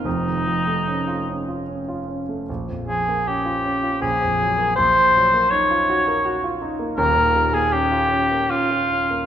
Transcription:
X:1
M:3/4
L:1/16
Q:1/4=78
K:Ebmix
V:1 name="Cor anglais"
E8 z4 | z2 A2 G4 A4 | c4 d6 z2 | B3 A G4 F4 |]
V:2 name="Grand piano"
[F,,,F,,] E, F, =A, ^C F C F C F C A, | B,,, F,, F, B, D F D F B,,, F,, _G, B, | B,,, B,, _G, B, E F _G B G F E B, | [E,,,E,,] B,, G, B, D F D B, D F D B, |]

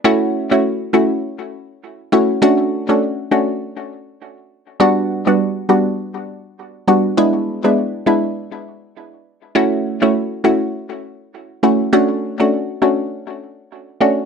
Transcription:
X:1
M:4/4
L:1/16
Q:"Swing 16ths" 1/4=101
K:A
V:1 name="Synth pluck"
[A,CEF]3 [A,CEF] z2 [A,CEF] z6 z [A,CEF] z | [A,CDF]3 [A,CDF] z2 [A,CDF] z8 z | [=G,B,DF]3 [G,B,DF] z2 [G,B,DF] z6 z [G,B,DF] z | [G,B,DE]3 [G,B,DE] z2 [G,B,DE] z8 z |
[A,CEF]3 [A,CEF] z2 [A,CEF] z6 z [A,CEF] z | [A,CDF]3 [A,CDF] z2 [A,CDF] z6 z [A,CDF] z |]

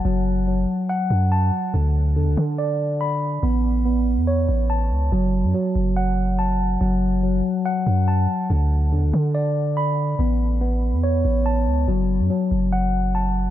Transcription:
X:1
M:4/4
L:1/16
Q:1/4=142
K:F#m
V:1 name="Tine electric piano"
[F,fa]4 F,4 f4 a4 | D,4 D,4 d4 b4 | B,4 B,4 c4 a4 | F,4 F,4 f4 a4 |
F,4 F,4 f4 a4 | D,4 D,4 d4 b4 | B,4 B,4 c4 a4 | F,4 F,4 f4 a4 |]
V:2 name="808-style bass" clef=bass
F,,,6 z4 F,,4 z2 | D,,4 E,, D,, D,8- D,2 | A,,,6- A,,, E,,3 A,,,4 C,,2 | F,,,3 F,, z2 F,,,8- F,,,2 |
F,,,6 z4 F,,4 z2 | D,,4 E,, D,, D,8- D,2 | A,,,6- A,,, E,,3 A,,,4 C,,2 | F,,,3 F,, z2 F,,,8- F,,,2 |]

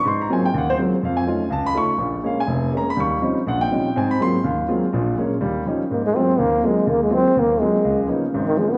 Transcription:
X:1
M:4/4
L:1/8
Q:"Swing" 1/4=246
K:Abmix
V:1 name="Grand piano"
[_c'=c'] b a =g _g c z2 | f ^g3 =a _c' ^c'2 | z2 f a3 b _c' | d'2 z2 g =g3 |
a _c' =c'2 z4 | z8 | z8 | z8 |
z8 |]
V:2 name="Grand piano"
A,,2 [G,A,B,CF] z E,,2 [G,A,B,CF] z | F,,2 [=A,^CEF] z ^C,,2 [A,CEF] z | [B,,,B,,]2 [A,B,D] z F,,,2 [A,B,D] z | [E,,=G,]2 [F,G,CDE] z B,,,2 [F,G,CDE] z |
[A,,C]2 [G,A,B,CF] z E,,2 [G,A,B,CF] z | [B,,,B,,]2 [A,B,D] z [E,,=G,]2 [F,G,DE] z | A,,2 [G,A,B,CF] z E,,2 [G,A,B,CF] z | E,,2 [G,A,B,CF] z E,,2 [G,A,B,CF] z |
D,,2 [F,B,_CDE] z [A,,,A,,]2 [F,B,CDE] z |]
V:3 name="Trombone"
z8 | z8 | z8 | z8 |
z8 | z8 | B, A, C2 B,2 A,2 | B, A, C2 B,2 A,2- |
A, z4 E, A, _C |]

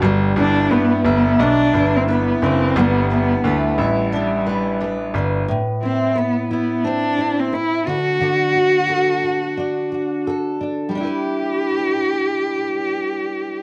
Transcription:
X:1
M:4/4
L:1/16
Q:"Swing 16ths" 1/4=88
K:G
V:1 name="Mandolin"
z2 D2 B2 e2 D2 B2 D2 B2 | B,2 D2 B2 e2 D2 B2 D2 B2 | z16 | z16 |
z16 |]
V:2 name="Steel-string acoustic guitar"
G,2 E2 B2 E2 D2 E2 B2 D2 | G,2 E2 B2 E2 D2 E2 B2 D2 | A,,2 E2 B2 E2 C2 E2 B2 D,2 | D,2 F2 A2 F2 D2 F2 A2 D2 |
[G,DEB]16 |]
V:3 name="Cello"
z2 D2 B,2 B,2 D3 C B,2 C2 | B,2 B,2 A,2 G,8 z2 | z2 C2 B,2 B,2 D3 C E2 F2- | F12 z4 |
G16 |]
V:4 name="Grand piano" clef=bass
G,,,2 G,,,2 G,,2 G,,,2 B,,,2 G,,,4 F,,,2 | G,,,4 D,,2 A,,,8 G,,,2 | z16 | z16 |
z16 |]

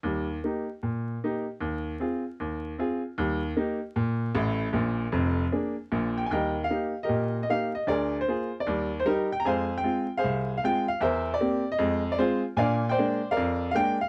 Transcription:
X:1
M:4/4
L:1/16
Q:"Swing" 1/4=153
K:Eb
V:1 name="Upright piano"
z16 | z16 | z16 | z12 z2 g a |
[Beg]3 f4 [GBe]4 e f2 e2 | [ABd]3 c4 d4 c [EGB]2 g b | [cfa]3 g4 [Acf]4 f g2 f2 | [Bc=e]3 d4 _e4 d [FAc]2 z2 |
[dfa]3 [cdg]4 [Bdf]4 f g2 f2 |]
V:2 name="Upright piano"
[E,,G,]4 [B,EG]4 B,,4 [B,EG]4 | E,,4 [CFA]4 E,,4 [CFA]4 | [E,,G,]4 [B,EG]4 B,,4 [=A,,,=A,,]4 | [B,,,B,,]4 [F,,,F,,]4 [B,DA]4 [B,,,B,,]4 |
[E,,G,]4 [B,EG]4 B,,4 [B,EG]4 | D,,4 [B,FA]4 [E,,G,]4 G,4 | [F,,A,]4 [A,CF]4 C,,4 [A,CF]4 | =E,,4 [B,CG]4 [F,,A,]4 [A,C]4 |
[B,,D]4 [A,B,D]4 F,,4 [A,B,D]4 |]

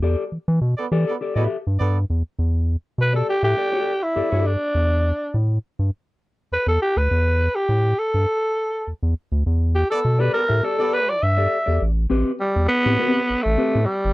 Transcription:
X:1
M:4/4
L:1/16
Q:1/4=102
K:Em
V:1 name="Alto saxophone"
z16 | z4 B A G G4 E3 D2- | D4 z8 B A G B- | B3 G3 A6 z4 |
z2 G A2 B ^A2 =A2 B d e4 | z4 G,2 B,4- B, A,3 G,2 |]
V:2 name="Clean electric guitar"
[GAd] z4 z [GAd] z [GAd] [GAe] z6 | z4 z [GAd] z [GAe] [GAd] [GAd] z2 [GAd] [GAd] z2 | z16 | z16 |
z4 z [GAd] z [GAe] [GAd] [GAd] z3 [GAd] z [GAd] | z2 [CGB] z4 [CGB] [CGB] z3 [CGB] z3 |]
V:3 name="Horn section"
z4 z [B,Ad] z [B,Ad] z [B,Ad] z2 [B,Ad]2 z2 | z16 | z16 | z16 |
z3 [B,Ad] z2 [B,Ad] z2 [B,Ad]3 z4 | z16 |]
V:4 name="Analog synth bass" clef=bass
E,, z E, E, B,, z E, z2 A,, z G,, G,,2 E,, z | E,,3 z B,,2 z A,, z4 G,, G,,2 z | E,,3 z A,,2 z G,, z4 E,, E,, z D,, | E,,3 z A,,2 z G,, z4 E,, E,, z D,, |
E,,3 z B,,2 z A,, z4 G,,2 z E,, | A,,,2 A,,, z2 E,, z A,, z2 A,,, A,,, z A,, z G,,, |]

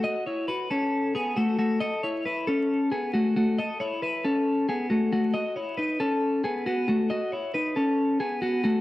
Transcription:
X:1
M:4/4
L:1/8
Q:1/4=136
K:Alyd
V:1 name="Clean electric guitar"
[Fd] [Ec] [FB] [CA]2 [B,G] [A,F] [A,F] | [Ad] [Ec] [EB] [CA]2 [B,G] [A,F] [A,F] | [Ad] [Ec] [EB] [CA]2 [B,G] [A,F] [A,F] | [Fd] [Ec] [DB] [CA]2 [B,G] [B,F] [A,F] |
[Fd] [Ec] [DB] [CA]2 [B,G] [B,F] [A,F] |]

